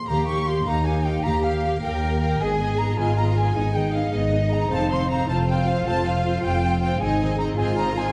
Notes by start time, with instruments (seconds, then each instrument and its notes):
Already playing: harp A#2 F3 A#3 F4 G#4
0.07 double bass section D#2, harp D#3, viola section A#3 G4, cello section G4, violin section F5 A#5, flute A#5
0.27 viola section A#3 G4, harp D#4, violin section F5 C#6, flute C#6
0.46 viola section A#3 G4, harp F4, violin section F5 C6, flute C6
0.65 double bass section D#2, viola section A#3 G4, cello section D#4, harp A#4, violin section F5 A#5, flute A#5
0.85 viola section A#3 G4, harp G4, violin section F5 G#5, flute G#5
1.03 viola section A#3 G4, harp F4, violin section F5 G5, flute G5
1.23 double bass section D#2, harp D#3, viola section A#3 G4, cello section G4, violin section F5 A#5, flute A#5
1.42 viola section A#3 G4, harp D#4, violin section F5, flute F5
1.64 viola section A#3 G4, harp F4, violin section F5
1.81 double bass section D#2, viola section A#3 G4, cello section A#4, harp A#4, violin section F5 G5, flute G5
2.02 viola section A#3 G4, harp G4, violin section F5
2.21 viola section A#3 G4, harp F4, violin section F5 G5, flute G5
2.40 double bass section G#1, harp G#2, viola section B3 G#4, cello section G#4, violin section D#5 G#5, flute G#5
2.60 harp D#3, viola section B3 G#4, violin section D#5
2.78 viola section B3 G#4, harp D#4, violin section D#5 A#5, flute A#5
2.98 double bass section G#1, viola section B3 G#4, cello section F4, harp B4, violin section D#5 G#5, flute G#5
3.17 viola section B3 G#4, harp G#4, violin section D#5 A#5, flute A#5
3.36 viola section B3 G#4, harp D#4, violin section D#5 G#5, flute G#5
3.56 double bass section G#1, harp G#2, viola section B3 G#4, cello section D#4, violin section D#5
3.74 harp D#3, viola section B3 G#4, violin section D#5 G5, flute G5
3.93 viola section B3 G#4, harp D#4, violin section D#5 F5, flute F5
4.13 double bass section G#1, viola section B3 G#4, harp B4, violin section D#5, flute D#5
4.32 viola section B3 G#4, harp G#4, violin section D#5
4.51 viola section B3 G#4, harp D#4, violin section D#5 A#5, flute A#5
4.71 double bass section F1, harp F2, viola section C4 C5, violin section F5 A5, flute A5
4.90 harp C3, viola section C4 C5, violin section F5 C6, flute C6
5.09 viola section C4 C5, harp F4, violin section F5 A#5, flute A#5
5.29 double bass section F1, viola section C4 C5, cello section F4, harp C5, violin section F5 A5, flute A5
5.47 viola section C4 C5, harp F4, violin section F5 G5, flute G5
5.67 viola section C4 C5, harp C4, violin section F5, flute F5
5.86 double bass section F1, harp F2, viola section C4 C5, violin section F5 A5, flute A5
6.05 harp C3, viola section C4 C5, violin section F5, flute F5
6.25 viola section C4 C5, harp F4, violin section F5
6.43 double bass section F1, viola section C4 C5, harp C5, violin section F5 G5, flute G5
6.63 viola section C4 C5, harp F4, violin section F5
6.82 viola section C4 C5, harp C4, violin section F5 G5, flute G5
7.01 double bass section G#1, harp G#2, viola section C4 G#4, cello section D#4, violin section D#5 G#5, flute G#5
7.21 harp D#3, viola section C4 G#4, violin section D#5
7.38 viola section C4 G#4, harp D#4, violin section D#5 A#5, flute A#5
7.58 double bass section G#1, viola section C4 G#4, cello section F4, harp C5, violin section D#5 G#5, flute G#5
7.77 viola section C4 G#4, harp D#4, violin section D#5 A#5, flute A#5
7.96 viola section C4 G#4, harp C4, violin section D#5 G#5, flute G#5